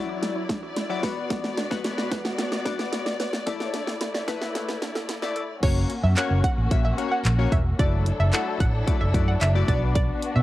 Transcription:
Already playing: string section F#2 F#3 E4 D5, synth keys F#3 E4 D5
0.09 synth arpeggio sound D6
0.22 synth arpeggio sound F#3, snare, closed hi-hat
0.36 synth arpeggio sound E4
0.49 synth arpeggio sound D4, kick, snare, closed hi-hat
0.63 synth arpeggio sound F#4
0.76 synth arpeggio sound E4, snare, closed hi-hat
0.90 synth keys F#3 E4 D5, synth arpeggio sound F#5
1.03 string section B2 B3 F#4, synth keys B3 F#4 D5, synth arpeggio sound B4, kick, snare, open hi-hat
1.30 synth arpeggio sound B3, kick, snare, closed hi-hat
1.44 snare
1.57 synth arpeggio sound D4, snare, closed hi-hat
1.71 synth keys B3 F#4 B4, kick, snare
1.84 synth arpeggio sound F#4, snare, closed hi-hat
1.98 synth arpeggio sound D5, snare
2.11 synth arpeggio sound B4, kick, snare, closed hi-hat
2.25 synth arpeggio sound F#5, snare
2.38 synth arpeggio sound B3, snare, closed hi-hat
2.52 synth arpeggio sound F#4, snare
2.65 synth keys B3 F#4 D5, synth arpeggio sound D4, kick, snare, closed hi-hat
2.79 synth arpeggio sound B4, snare
2.93 synth arpeggio sound F#4, snare, closed hi-hat
3.06 synth arpeggio sound D5, snare
3.20 synth arpeggio sound B4, snare, open hi-hat
3.33 snare
3.46 string section A2 A3 E4, synth keys A3 E4 D5, synth arpeggio sound A3, kick, snare, closed hi-hat
3.60 snare
3.74 synth arpeggio sound D4, snare, closed hi-hat
3.87 snare
4.01 synth arpeggio sound E4, snare, closed hi-hat
4.14 synth arpeggio sound D5, snare
4.28 synth keys A3 E4 B4, synth arpeggio sound A4, kick, snare, closed hi-hat
4.42 synth arpeggio sound E5, snare
4.55 synth arpeggio sound A3, snare, closed hi-hat
4.69 synth arpeggio sound E4, snare
4.82 synth arpeggio sound D4, snare, closed hi-hat
4.95 synth arpeggio sound A4, snare
5.09 synth arpeggio sound E4, snare, closed hi-hat
5.22 synth keys A3 E4 D5, synth arpeggio sound D5, snare
5.36 synth arpeggio sound A4, closed hi-hat
5.63 fingered electric bass F#1, synth keys A#3 C#4 F#4 C#5, string section A#3 C#4 F#4, synth pluck C#5, kick, closed hi-hat, crash
5.90 closed hi-hat
6.03 fingered electric bass F#2, synth pluck E5
6.17 synth keys A#3 C#4 F#4 C#5, synth pluck F#5, clap, closed hi-hat
6.31 fingered electric bass F#1
6.44 synth pluck F#5, kick, closed hi-hat
6.58 fingered electric bass A1
6.71 fingered electric bass A#1, synth keys A#3 C#4 F#4 E5, kick, closed hi-hat
6.85 synth pluck E5
6.98 synth keys A#3 C#4 F#4 C#5, closed hi-hat
7.12 synth pluck F#5
7.25 fingered electric bass A#1, clap, closed hi-hat
7.38 synth keys A#3 C#4 F#4 C#5
7.52 fingered electric bass E1, synth pluck E5, kick, closed hi-hat
7.79 fingered electric bass F#1, string section F#3 D4 E4 A4, synth keys A3 E4 F#4 D5, synth pluck D5, kick, closed hi-hat
8.06 closed hi-hat
8.20 fingered electric bass F#1, synth pluck E5
8.33 synth keys A3 E4 F#4 A4, synth pluck F#5, clap, closed hi-hat
8.60 fingered electric bass A1, synth pluck F#5, kick, closed hi-hat
8.87 synth keys A3 E4 F#4 D5, kick, closed hi-hat
9.01 fingered electric bass F#1, synth pluck E5
9.14 fingered electric bass F#2, synth keys A3 E4 F#4 D5, kick, closed hi-hat
9.28 synth pluck F#5
9.41 fingered electric bass F#1, synth pluck E5, clap, closed hi-hat
9.55 synth keys A3 E4 F#4 D5
9.68 fingered electric bass B1, synth keys B3 D4 F#4 D5, string section B3 F#4, synth pluck D5, kick, closed hi-hat
9.95 synth pluck D5, kick, closed hi-hat
10.22 closed hi-hat
10.36 fingered electric bass B2, synth pluck E5

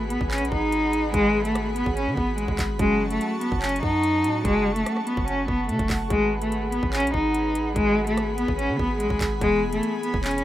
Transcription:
Already playing: 808-style bass G#1, synth keys F#4 G#4 B4, analog synth pad G#4 F#5 B5
0.10 cello B3, closed hi-hat
0.21 808-style bass G#1, kick
0.31 cello C#4, clap, closed hi-hat
0.38 808-style bass B1, closed hi-hat
0.45 closed hi-hat
0.52 808-style bass G#1, cello D#4, kick
0.72 closed hi-hat
0.93 808-style bass A1, closed hi-hat
1.04 808-style bass G#1
1.14 808-style bass G#1, cello G#3, kick, closed hi-hat
1.45 cello A3, closed hi-hat
1.55 cross-stick, closed hi-hat
1.76 cello B3, closed hi-hat
1.86 808-style bass G#1, kick
1.96 cello C#4, closed hi-hat
2.07 808-style bass D#3
2.17 808-style bass G#1, cello B3, kick
2.38 808-style bass A1, cello G#3, closed hi-hat
2.48 808-style bass G#1, kick
2.59 808-style bass G#1, kick, clap, closed hi-hat
2.77 808-style bass F#1, synth keys F#3 C#4 F#4, cello G#3, analog synth pad F#5 A5 C#6, kick, closed hi-hat
3.10 cello A3, closed hi-hat
3.21 closed hi-hat
3.41 cello B3, closed hi-hat
3.52 808-style bass F#1, kick
3.62 cello C#4, clap, closed hi-hat
3.69 closed hi-hat
3.76 closed hi-hat
3.83 808-style bass F#2, cello D#4, kick
4.03 closed hi-hat
4.24 808-style bass A2, closed hi-hat
4.45 808-style bass F#1, cello G#3, kick, closed hi-hat
4.76 cello A3, closed hi-hat
4.86 cross-stick, closed hi-hat
4.97 cross-stick
5.07 cello B3, closed hi-hat
5.17 808-style bass F#1, kick
5.28 cello C#4, closed hi-hat
5.48 808-style bass F#1, cello B3, kick
5.69 808-style bass C#3, cello A3, closed hi-hat
5.79 808-style bass F#1, kick, closed hi-hat
5.90 808-style bass F#1, kick, clap, open hi-hat
6.08 808-style bass G#1, cello G#3, synth keys F#4 G#4 B4, analog synth pad G#4 B5, kick, closed hi-hat
6.41 cello A3, closed hi-hat
6.52 closed hi-hat
6.72 cello B3, closed hi-hat
6.83 808-style bass G#1, kick
6.93 cello C#4, clap, closed hi-hat
7.00 808-style bass B1, closed hi-hat
7.07 closed hi-hat
7.14 808-style bass G#1, cello D#4, kick
7.35 closed hi-hat
7.55 808-style bass A1, closed hi-hat
7.66 808-style bass G#1
7.76 808-style bass G#1, cello G#3, kick, closed hi-hat
8.07 cello A3, closed hi-hat
8.17 cross-stick, closed hi-hat
8.38 cello B3, closed hi-hat
8.48 808-style bass G#1, kick
8.59 cello C#4, closed hi-hat
8.69 808-style bass D#3
8.79 808-style bass G#1, cello B3, kick
9.00 808-style bass A1, cello G#3, closed hi-hat
9.10 808-style bass G#1, kick
9.21 808-style bass G#1, kick, clap, closed hi-hat
9.39 808-style bass E1, synth keys E3 B3 G#4, cello G#3, analog synth pad G#5, kick, closed hi-hat
9.73 cello A3, closed hi-hat
9.83 closed hi-hat
10.03 cello B3, closed hi-hat
10.14 808-style bass E1, kick
10.24 cello C#4, clap, closed hi-hat
10.31 closed hi-hat
10.38 closed hi-hat

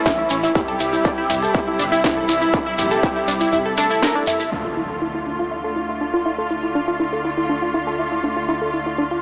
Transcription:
Already playing: string section E3 A3 C#4, analog synth lead E4
0.05 analog synth bass A1, synth arpeggio sound E4 E5, kick, snare, shekere
0.19 synth arpeggio sound E4 E5
0.30 analog synth bass A1, synth arpeggio sound C#4 C#5, open hi-hat, ride, shekere
0.43 synth arpeggio sound E4 E5, shekere
0.55 string section C3 G3 E4, synth arpeggio sound E4 E5, analog synth lead G4, kick, mid tom, shekere
0.68 synth arpeggio sound A4 A5, open hi-hat
0.80 analog synth bass C2, synth arpeggio sound E4 E5, open hi-hat, ride, shekere
0.93 synth arpeggio sound E4 E5, shekere
1.05 synth arpeggio sound D4 D5, kick, shekere
1.18 synth arpeggio sound E4 E5
1.30 analog synth bass C2, synth arpeggio sound E4 E5, mid tom, open hi-hat, ride, shekere
1.42 synth arpeggio sound A4 A5, shekere
1.54 synth arpeggio sound E4 E5, kick, shekere
1.67 synth arpeggio sound E4 E5
1.79 analog synth bass G1, synth arpeggio sound D4 D5, open hi-hat, ride, shekere
1.92 synth arpeggio sound E4 E5, shekere
2.04 analog synth bass C2, synth arpeggio sound E4 E5, analog synth lead E4, kick, snare, mid tom, shekere
2.17 synth arpeggio sound A4 A5
2.29 analog synth bass C2, synth arpeggio sound E4 E5, open hi-hat, ride, shekere
2.41 synth arpeggio sound E4 E5, shekere
2.53 synth arpeggio sound D4 D5, kick, shekere
2.66 synth arpeggio sound E4 E5
2.78 analog synth bass A#1, synth arpeggio sound E4 E5, analog synth lead G4, mid tom, open hi-hat, ride, shekere
2.91 synth arpeggio sound A4 A5, shekere
3.03 synth arpeggio sound E4 E5, kick, shekere
3.16 synth arpeggio sound E4 E5
3.28 analog synth bass C2, synth arpeggio sound D4 D5, open hi-hat, ride, shekere
3.40 synth arpeggio sound E4 E5, open hi-hat, shekere
3.52 synth arpeggio sound E4 E5, mid tom, shekere
3.65 synth arpeggio sound A4 A5
3.77 synth arpeggio sound D4 D5, analog synth lead A4, open hi-hat, ride, shekere
3.90 synth arpeggio sound E4 E5, shekere
4.02 synth arpeggio sound A#4 A#5, snare, shekere
4.15 synth arpeggio sound D4 D5
4.27 synth arpeggio sound E4 E5, mid tom, open hi-hat, ride, shekere
4.40 synth arpeggio sound E4 E5, shekere
4.52 analog synth bass D2, string section D3 A3 F4, synth arpeggio sound D4, crash, impact
4.65 synth arpeggio sound F4
4.77 synth arpeggio sound E4
4.90 synth arpeggio sound A4
5.02 synth arpeggio sound E4
5.15 synth arpeggio sound E4
5.27 synth arpeggio sound D4
5.39 synth arpeggio sound F4
5.51 synth arpeggio sound E4
5.64 synth arpeggio sound A4
5.76 synth arpeggio sound E4
5.89 synth arpeggio sound E4
6.01 synth arpeggio sound D4
6.14 synth arpeggio sound F4
6.26 synth arpeggio sound E4
6.38 synth arpeggio sound A4
6.51 synth arpeggio sound E4
6.63 synth arpeggio sound E4
6.75 synth arpeggio sound D4
6.88 synth arpeggio sound F4
7.00 synth arpeggio sound E4
7.13 synth arpeggio sound A4
7.25 synth arpeggio sound E4
7.37 synth arpeggio sound E4
7.49 synth arpeggio sound D4
7.62 synth arpeggio sound F4
7.74 synth arpeggio sound E4
7.87 synth arpeggio sound A4
7.99 synth arpeggio sound E4
8.12 synth arpeggio sound E4
8.24 synth arpeggio sound D4
8.37 synth arpeggio sound F4
8.49 synth arpeggio sound E4
8.61 synth arpeggio sound A4
8.74 synth arpeggio sound E4
8.86 synth arpeggio sound E4
8.98 synth arpeggio sound D4
9.11 synth arpeggio sound F4

